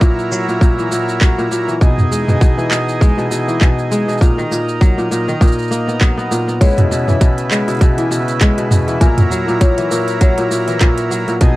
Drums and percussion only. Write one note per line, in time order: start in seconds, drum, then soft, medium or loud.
0.01 kick loud
0.01 cabasa soft
0.19 cabasa soft
0.32 cabasa medium
0.49 cabasa soft
0.61 kick loud
0.61 cabasa soft
0.79 cabasa soft
0.92 cabasa medium
1.09 cabasa soft
1.21 kick loud
1.21 clap medium
1.21 cabasa soft
1.39 cabasa soft
1.52 cabasa medium
1.69 cabasa soft
1.81 kick loud
1.81 cabasa soft
1.98 mid tom medium
1.98 cabasa soft
2.12 cabasa medium
2.28 mid tom soft
2.28 cabasa soft
2.41 kick loud
2.41 cabasa soft
2.59 cabasa soft
2.71 clap medium
2.71 cabasa medium
2.89 cabasa soft
3.01 kick loud
3.01 cabasa soft
3.19 cabasa soft
3.32 cabasa medium
3.49 cabasa soft
3.61 kick loud
3.61 clap medium
3.61 cabasa soft
3.79 cabasa soft
3.92 cabasa medium
4.09 cabasa soft
4.12 cabasa soft
4.18 kick loud
4.18 cabasa soft
4.22 cabasa soft
4.39 cabasa soft
4.52 cabasa medium
4.69 cabasa soft
4.81 kick loud
4.81 cabasa soft
4.99 cabasa soft
5.12 cabasa medium
5.29 cabasa soft
5.41 kick loud
5.41 cabasa soft
5.47 cabasa soft
5.52 cabasa soft
5.59 cabasa soft
5.62 cabasa soft
5.68 cabasa soft
5.72 cabasa medium
5.89 cabasa soft
6.01 kick loud
6.01 clap medium
6.01 cabasa soft
6.19 cabasa soft
6.32 cabasa medium
6.49 cabasa soft
6.61 kick loud
6.61 closed hi-hat medium
6.61 cabasa soft
6.65 cabasa soft
6.70 cabasa soft
6.72 cabasa soft
6.76 closed hi-hat soft
6.76 mid tom medium
6.76 cabasa soft
6.79 cabasa soft
6.92 cabasa medium
7.08 mid tom medium
7.08 cabasa soft
7.21 kick loud
7.21 closed hi-hat medium
7.21 cabasa soft
7.38 closed hi-hat soft
7.38 cabasa soft
7.51 clap medium
7.51 cabasa medium
7.68 closed hi-hat soft
7.68 cabasa soft
7.70 closed hi-hat soft
7.75 closed hi-hat soft
7.77 closed hi-hat soft
7.79 kick medium
7.79 closed hi-hat soft
7.81 closed hi-hat medium
7.81 cabasa soft
7.98 closed hi-hat soft
7.98 cabasa soft
8.12 cabasa medium
8.28 closed hi-hat soft
8.28 cabasa soft
8.41 kick medium
8.41 clap medium
8.41 closed hi-hat medium
8.41 cabasa soft
8.58 closed hi-hat soft
8.58 cabasa soft
8.71 mid tom medium
8.71 cabasa medium
8.88 closed hi-hat soft
8.88 cabasa soft
9.01 kick medium
9.01 closed hi-hat medium
9.01 cabasa soft
9.18 closed hi-hat soft
9.18 mid tom medium
9.18 cabasa soft
9.32 cabasa medium
9.48 cabasa soft
9.61 kick medium
9.61 closed hi-hat medium
9.61 cabasa soft
9.78 closed hi-hat soft
9.78 cabasa soft
9.91 cabasa medium
10.08 closed hi-hat soft
10.08 cabasa soft
10.21 kick loud
10.21 closed hi-hat medium
10.21 cabasa soft
10.38 closed hi-hat soft
10.38 cabasa soft
10.52 cabasa medium
10.68 closed hi-hat soft
10.68 cabasa soft
10.81 kick loud
10.81 clap medium
10.81 closed hi-hat medium
10.81 cabasa soft
10.98 closed hi-hat soft
10.98 cabasa soft
11.12 cabasa medium
11.28 closed hi-hat soft
11.28 cabasa soft
11.41 kick loud
11.41 closed hi-hat medium
11.41 cabasa soft